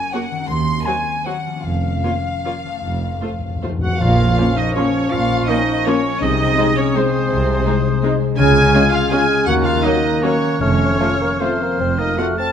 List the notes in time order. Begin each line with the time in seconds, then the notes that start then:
Already playing: F#2 C#4 A#4 G#5
0.13 A#3 F#4 C#5 F#5
0.31 D#3
0.35 C4
0.40 D#4
0.45 F#4 C6
0.49 D#2 C6
0.85 F#3 F#4 C5 G#5
1.25 F#3 F#4 C5 F#5
1.46 F3
1.51 A#3
1.55 C#4
1.60 F4
1.64 F1 F2 F5
2.03 A#3 F4 C#5
2.45 A#3 F4 C#5
2.65 F3
2.70 A3
2.74 C4
2.79 F4
2.83 F1 F2
2.92 F2
2.99 F2
3.06 F2
3.15 F2
3.22 F2 A3 F4 C5
3.31 F2
3.39 F2
3.47 F2
3.56 F2
3.62 F2 A3 F4 C5
3.71 F2
3.78 F2 F#4 F#5
3.86 F2
4.00 A#1 A#2 F3 F4 F5 C#6
4.19 A#3
4.37 F3 A#3 C#4 F4
4.56 D#4 A#4 D#5
4.75 F3 A#3 C#4 C#5
4.94 A#3
5.11 A#1 A#2 F4 F5
5.30 F3
5.48 F3 A#3 C#4 D#4 F4 D#5
5.68 A#4
5.86 F3 A#3 C#4 C#5
6.06 A#3
6.21 C2 C3 G#3 D#4 D#5 D#6
6.41 G#3
6.58 G#3 C4 D#4 G#4
6.77 C#4 D#4 C#5
6.95 G#3 C4 D#4 C5
7.14 C4
7.30 C2 C3
7.48 G#3
7.66 G#3 C4 D#4 G#4
7.85 D#4
8.03 G#3 C4 D#4
8.21 C4
8.38 C#2 C#3 G#3 G#4 G#5 F6
8.55 C#4
8.74 G#3 C#4 F4
8.92 F4 C#5 F5
9.11 G#3 C#4 F4 G#4 G#5 F6
9.29 C#4
9.46 D#2 D#3 A#3 F#4 F#5 F#6
9.64 A#3 F4 F5
9.83 F#3 A#3 D#4 F#4 D#5 F#6
10.03 A#4
10.22 F#3 A#3 C#4 D#4 F#4 C#5
10.41 F#3
10.60 F1 F2 F3 A3 C#4 C#5 F6
10.80 F4
11.00 F3 A3 C4 F4 A4
11.20 A#3 F5
11.40 F3 A3 C4 F4 A4 C5 F6
11.60 A#3 F4
11.79 F1 F2 F3 C4
11.98 F3 A#3 D#4 D#5
12.17 F3 A3 C4 F4 F#4 F#5
12.37 C4 A4 F5 A5